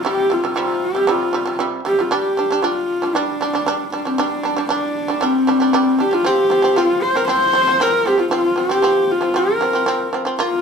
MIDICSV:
0, 0, Header, 1, 3, 480
1, 0, Start_track
1, 0, Tempo, 517241
1, 44, Time_signature, 4, 2, 24, 8
1, 9852, End_track
2, 0, Start_track
2, 0, Title_t, "Horsehead fiddle"
2, 0, Program_c, 0, 110
2, 62, Note_on_c, 0, 67, 89
2, 300, Note_on_c, 0, 65, 76
2, 314, Note_off_c, 0, 67, 0
2, 532, Note_off_c, 0, 65, 0
2, 550, Note_on_c, 0, 65, 78
2, 785, Note_on_c, 0, 67, 82
2, 798, Note_off_c, 0, 65, 0
2, 1030, Note_on_c, 0, 65, 74
2, 1044, Note_off_c, 0, 67, 0
2, 1497, Note_off_c, 0, 65, 0
2, 1731, Note_on_c, 0, 67, 77
2, 1860, Note_on_c, 0, 65, 70
2, 1874, Note_off_c, 0, 67, 0
2, 1970, Note_on_c, 0, 67, 74
2, 1984, Note_off_c, 0, 65, 0
2, 2438, Note_on_c, 0, 65, 79
2, 2452, Note_off_c, 0, 67, 0
2, 2927, Note_on_c, 0, 62, 84
2, 2941, Note_off_c, 0, 65, 0
2, 3642, Note_off_c, 0, 62, 0
2, 3647, Note_on_c, 0, 62, 71
2, 3768, Note_on_c, 0, 60, 77
2, 3782, Note_off_c, 0, 62, 0
2, 3886, Note_on_c, 0, 62, 83
2, 3900, Note_off_c, 0, 60, 0
2, 4366, Note_off_c, 0, 62, 0
2, 4373, Note_on_c, 0, 62, 84
2, 4851, Note_on_c, 0, 60, 86
2, 4865, Note_off_c, 0, 62, 0
2, 5571, Note_on_c, 0, 67, 86
2, 5585, Note_off_c, 0, 60, 0
2, 5689, Note_on_c, 0, 65, 91
2, 5703, Note_off_c, 0, 67, 0
2, 5817, Note_on_c, 0, 67, 99
2, 5831, Note_off_c, 0, 65, 0
2, 6281, Note_on_c, 0, 65, 95
2, 6294, Note_off_c, 0, 67, 0
2, 6520, Note_on_c, 0, 72, 95
2, 6534, Note_off_c, 0, 65, 0
2, 6647, Note_on_c, 0, 70, 93
2, 6661, Note_off_c, 0, 72, 0
2, 6756, Note_off_c, 0, 70, 0
2, 6762, Note_on_c, 0, 72, 112
2, 7256, Note_on_c, 0, 70, 96
2, 7269, Note_off_c, 0, 72, 0
2, 7495, Note_on_c, 0, 67, 86
2, 7508, Note_off_c, 0, 70, 0
2, 7606, Note_on_c, 0, 65, 76
2, 7620, Note_off_c, 0, 67, 0
2, 7716, Note_off_c, 0, 65, 0
2, 7722, Note_on_c, 0, 65, 87
2, 7973, Note_on_c, 0, 67, 91
2, 7987, Note_off_c, 0, 65, 0
2, 8458, Note_on_c, 0, 65, 82
2, 8472, Note_off_c, 0, 67, 0
2, 8697, Note_on_c, 0, 70, 82
2, 8710, Note_off_c, 0, 65, 0
2, 9411, Note_off_c, 0, 70, 0
2, 9659, Note_on_c, 0, 65, 83
2, 9852, Note_off_c, 0, 65, 0
2, 9852, End_track
3, 0, Start_track
3, 0, Title_t, "Shamisen"
3, 0, Program_c, 1, 106
3, 43, Note_on_c, 1, 48, 81
3, 56, Note_on_c, 1, 55, 97
3, 236, Note_off_c, 1, 48, 0
3, 242, Note_off_c, 1, 55, 0
3, 278, Note_on_c, 1, 48, 63
3, 292, Note_on_c, 1, 55, 72
3, 377, Note_off_c, 1, 48, 0
3, 384, Note_off_c, 1, 55, 0
3, 405, Note_on_c, 1, 48, 69
3, 415, Note_on_c, 1, 55, 79
3, 500, Note_off_c, 1, 48, 0
3, 505, Note_off_c, 1, 55, 0
3, 518, Note_on_c, 1, 48, 84
3, 532, Note_on_c, 1, 55, 88
3, 809, Note_off_c, 1, 48, 0
3, 816, Note_off_c, 1, 55, 0
3, 879, Note_on_c, 1, 48, 66
3, 893, Note_on_c, 1, 55, 68
3, 977, Note_off_c, 1, 48, 0
3, 985, Note_off_c, 1, 55, 0
3, 995, Note_on_c, 1, 48, 97
3, 1007, Note_on_c, 1, 55, 95
3, 1192, Note_off_c, 1, 48, 0
3, 1197, Note_off_c, 1, 55, 0
3, 1233, Note_on_c, 1, 48, 74
3, 1247, Note_on_c, 1, 55, 79
3, 1334, Note_off_c, 1, 48, 0
3, 1341, Note_off_c, 1, 55, 0
3, 1351, Note_on_c, 1, 48, 65
3, 1367, Note_on_c, 1, 55, 69
3, 1453, Note_off_c, 1, 48, 0
3, 1461, Note_off_c, 1, 55, 0
3, 1474, Note_on_c, 1, 48, 85
3, 1486, Note_on_c, 1, 55, 96
3, 1671, Note_off_c, 1, 48, 0
3, 1677, Note_off_c, 1, 55, 0
3, 1716, Note_on_c, 1, 48, 61
3, 1728, Note_on_c, 1, 55, 70
3, 1816, Note_off_c, 1, 48, 0
3, 1822, Note_off_c, 1, 55, 0
3, 1844, Note_on_c, 1, 48, 56
3, 1858, Note_on_c, 1, 55, 58
3, 1940, Note_off_c, 1, 48, 0
3, 1947, Note_off_c, 1, 55, 0
3, 1958, Note_on_c, 1, 55, 86
3, 1966, Note_on_c, 1, 62, 96
3, 2153, Note_off_c, 1, 55, 0
3, 2157, Note_off_c, 1, 62, 0
3, 2201, Note_on_c, 1, 55, 69
3, 2215, Note_on_c, 1, 62, 72
3, 2299, Note_off_c, 1, 55, 0
3, 2306, Note_off_c, 1, 62, 0
3, 2325, Note_on_c, 1, 55, 70
3, 2339, Note_on_c, 1, 62, 81
3, 2421, Note_off_c, 1, 55, 0
3, 2428, Note_off_c, 1, 62, 0
3, 2436, Note_on_c, 1, 55, 82
3, 2449, Note_on_c, 1, 62, 95
3, 2728, Note_off_c, 1, 55, 0
3, 2735, Note_off_c, 1, 62, 0
3, 2803, Note_on_c, 1, 55, 60
3, 2815, Note_on_c, 1, 62, 68
3, 2900, Note_off_c, 1, 55, 0
3, 2906, Note_off_c, 1, 62, 0
3, 2923, Note_on_c, 1, 55, 92
3, 2933, Note_on_c, 1, 62, 97
3, 3116, Note_off_c, 1, 55, 0
3, 3121, Note_off_c, 1, 62, 0
3, 3162, Note_on_c, 1, 55, 72
3, 3174, Note_on_c, 1, 62, 81
3, 3260, Note_off_c, 1, 55, 0
3, 3266, Note_off_c, 1, 62, 0
3, 3280, Note_on_c, 1, 55, 62
3, 3293, Note_on_c, 1, 62, 81
3, 3379, Note_off_c, 1, 55, 0
3, 3385, Note_off_c, 1, 62, 0
3, 3400, Note_on_c, 1, 55, 87
3, 3413, Note_on_c, 1, 62, 102
3, 3595, Note_off_c, 1, 55, 0
3, 3601, Note_off_c, 1, 62, 0
3, 3642, Note_on_c, 1, 55, 59
3, 3652, Note_on_c, 1, 62, 66
3, 3739, Note_off_c, 1, 55, 0
3, 3744, Note_off_c, 1, 62, 0
3, 3762, Note_on_c, 1, 55, 62
3, 3775, Note_on_c, 1, 62, 69
3, 3859, Note_off_c, 1, 55, 0
3, 3866, Note_off_c, 1, 62, 0
3, 3881, Note_on_c, 1, 55, 95
3, 3892, Note_on_c, 1, 62, 102
3, 4075, Note_off_c, 1, 55, 0
3, 4081, Note_off_c, 1, 62, 0
3, 4115, Note_on_c, 1, 55, 74
3, 4130, Note_on_c, 1, 62, 77
3, 4216, Note_off_c, 1, 55, 0
3, 4224, Note_off_c, 1, 62, 0
3, 4236, Note_on_c, 1, 55, 75
3, 4251, Note_on_c, 1, 62, 80
3, 4337, Note_off_c, 1, 55, 0
3, 4344, Note_off_c, 1, 62, 0
3, 4352, Note_on_c, 1, 55, 84
3, 4365, Note_on_c, 1, 62, 96
3, 4647, Note_off_c, 1, 55, 0
3, 4653, Note_off_c, 1, 62, 0
3, 4717, Note_on_c, 1, 55, 66
3, 4730, Note_on_c, 1, 62, 73
3, 4817, Note_off_c, 1, 55, 0
3, 4824, Note_off_c, 1, 62, 0
3, 4833, Note_on_c, 1, 55, 93
3, 4847, Note_on_c, 1, 62, 96
3, 5031, Note_off_c, 1, 55, 0
3, 5038, Note_off_c, 1, 62, 0
3, 5078, Note_on_c, 1, 55, 77
3, 5091, Note_on_c, 1, 62, 87
3, 5178, Note_off_c, 1, 55, 0
3, 5184, Note_off_c, 1, 62, 0
3, 5197, Note_on_c, 1, 55, 72
3, 5211, Note_on_c, 1, 62, 75
3, 5297, Note_off_c, 1, 55, 0
3, 5304, Note_off_c, 1, 62, 0
3, 5319, Note_on_c, 1, 55, 92
3, 5330, Note_on_c, 1, 62, 104
3, 5514, Note_off_c, 1, 55, 0
3, 5520, Note_off_c, 1, 62, 0
3, 5555, Note_on_c, 1, 55, 61
3, 5569, Note_on_c, 1, 62, 65
3, 5656, Note_off_c, 1, 55, 0
3, 5663, Note_off_c, 1, 62, 0
3, 5671, Note_on_c, 1, 55, 61
3, 5687, Note_on_c, 1, 62, 64
3, 5774, Note_off_c, 1, 55, 0
3, 5782, Note_off_c, 1, 62, 0
3, 5796, Note_on_c, 1, 53, 84
3, 5812, Note_on_c, 1, 60, 103
3, 5992, Note_off_c, 1, 53, 0
3, 6000, Note_off_c, 1, 60, 0
3, 6032, Note_on_c, 1, 53, 62
3, 6044, Note_on_c, 1, 60, 78
3, 6134, Note_off_c, 1, 53, 0
3, 6140, Note_off_c, 1, 60, 0
3, 6146, Note_on_c, 1, 53, 82
3, 6162, Note_on_c, 1, 60, 84
3, 6252, Note_off_c, 1, 53, 0
3, 6260, Note_off_c, 1, 60, 0
3, 6276, Note_on_c, 1, 53, 85
3, 6290, Note_on_c, 1, 60, 95
3, 6569, Note_off_c, 1, 53, 0
3, 6576, Note_off_c, 1, 60, 0
3, 6640, Note_on_c, 1, 53, 66
3, 6650, Note_on_c, 1, 60, 80
3, 6738, Note_off_c, 1, 53, 0
3, 6744, Note_off_c, 1, 60, 0
3, 6754, Note_on_c, 1, 53, 94
3, 6767, Note_on_c, 1, 60, 93
3, 6951, Note_off_c, 1, 53, 0
3, 6958, Note_off_c, 1, 60, 0
3, 6992, Note_on_c, 1, 53, 80
3, 7006, Note_on_c, 1, 60, 82
3, 7094, Note_off_c, 1, 53, 0
3, 7101, Note_off_c, 1, 60, 0
3, 7121, Note_on_c, 1, 53, 72
3, 7133, Note_on_c, 1, 60, 67
3, 7219, Note_off_c, 1, 53, 0
3, 7225, Note_off_c, 1, 60, 0
3, 7239, Note_on_c, 1, 53, 90
3, 7248, Note_on_c, 1, 60, 110
3, 7434, Note_off_c, 1, 53, 0
3, 7439, Note_off_c, 1, 60, 0
3, 7476, Note_on_c, 1, 53, 61
3, 7490, Note_on_c, 1, 60, 68
3, 7576, Note_off_c, 1, 53, 0
3, 7583, Note_off_c, 1, 60, 0
3, 7589, Note_on_c, 1, 53, 56
3, 7601, Note_on_c, 1, 60, 62
3, 7693, Note_off_c, 1, 53, 0
3, 7699, Note_off_c, 1, 60, 0
3, 7713, Note_on_c, 1, 53, 93
3, 7726, Note_on_c, 1, 60, 95
3, 7911, Note_off_c, 1, 53, 0
3, 7917, Note_off_c, 1, 60, 0
3, 7942, Note_on_c, 1, 53, 67
3, 7958, Note_on_c, 1, 60, 73
3, 8049, Note_off_c, 1, 53, 0
3, 8057, Note_off_c, 1, 60, 0
3, 8067, Note_on_c, 1, 53, 71
3, 8082, Note_on_c, 1, 60, 76
3, 8172, Note_off_c, 1, 53, 0
3, 8179, Note_off_c, 1, 60, 0
3, 8188, Note_on_c, 1, 53, 82
3, 8203, Note_on_c, 1, 60, 89
3, 8485, Note_off_c, 1, 53, 0
3, 8492, Note_off_c, 1, 60, 0
3, 8544, Note_on_c, 1, 53, 65
3, 8556, Note_on_c, 1, 60, 70
3, 8651, Note_off_c, 1, 53, 0
3, 8657, Note_off_c, 1, 60, 0
3, 8668, Note_on_c, 1, 53, 81
3, 8685, Note_on_c, 1, 60, 98
3, 8868, Note_off_c, 1, 53, 0
3, 8877, Note_off_c, 1, 60, 0
3, 8916, Note_on_c, 1, 53, 74
3, 8929, Note_on_c, 1, 60, 75
3, 9016, Note_off_c, 1, 53, 0
3, 9023, Note_off_c, 1, 60, 0
3, 9033, Note_on_c, 1, 53, 64
3, 9047, Note_on_c, 1, 60, 66
3, 9135, Note_off_c, 1, 53, 0
3, 9142, Note_off_c, 1, 60, 0
3, 9152, Note_on_c, 1, 53, 85
3, 9167, Note_on_c, 1, 60, 96
3, 9351, Note_off_c, 1, 53, 0
3, 9358, Note_off_c, 1, 60, 0
3, 9398, Note_on_c, 1, 53, 67
3, 9412, Note_on_c, 1, 60, 73
3, 9498, Note_off_c, 1, 53, 0
3, 9504, Note_off_c, 1, 60, 0
3, 9513, Note_on_c, 1, 53, 71
3, 9526, Note_on_c, 1, 60, 68
3, 9615, Note_off_c, 1, 53, 0
3, 9621, Note_off_c, 1, 60, 0
3, 9639, Note_on_c, 1, 58, 89
3, 9651, Note_on_c, 1, 65, 105
3, 9834, Note_off_c, 1, 58, 0
3, 9840, Note_off_c, 1, 65, 0
3, 9852, End_track
0, 0, End_of_file